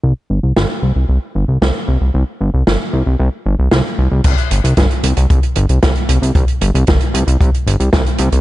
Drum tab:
CC |----------------|----------------|x---------------|----------------|
HH |----------------|----------------|xxxxxxxxxxxxxxxx|xxxxxxxxxxxxxxxx|
SD |----o-------o---|----o-------o---|----o-------o---|----o-------o---|
BD |----------------|----------------|o---o---o---o---|o---o---o---o---|